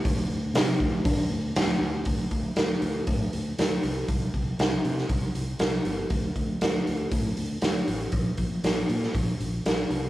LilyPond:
<<
  \new Staff \with { instrumentName = "Fingered electric bass" } { \clef bass \time 4/4 \key c \dorian \tempo 4 = 119 d,8 d,8 c8 d,8 d8 d,8 d,8 d,8 | d,8 d,8 d,8 d,8 a,8 d,8 d,8 c,8 | c,8 c,8 c,8 c8 c,8 c,8 c,8 g,,8 | d,8 d,8 d,8 d,8 a,8 d,8 d,8 a,,8 |
bes,,8 bes,,8 bes,,8 bes,8 bes,,8 bes,,8 bes,,8 c,8 | }
  \new DrumStaff \with { instrumentName = "Drums" } \drummode { \time 4/4 <hho bd>4 <hho sn>8 bd8 <hho bd>4 <hho sn>4 | <hho bd>8 <hho bd>8 <hho sn>8 hho8 <hho bd>8 hho8 <hho sn>8 hho8 | <hho bd>8 <hho bd>8 <hho sn>8 hho16 sn16 <hho bd>8 hho8 <hho sn>8 hho8 | <hho bd>8 <hho bd>8 <hho sn>8 hho8 <hho bd>8 hho8 <hho sn>8 hho8 |
<hho bd>8 <hho bd>8 <hho sn>8 hho16 sn16 <hho bd>8 hho8 <hho sn>8 hho8 | }
>>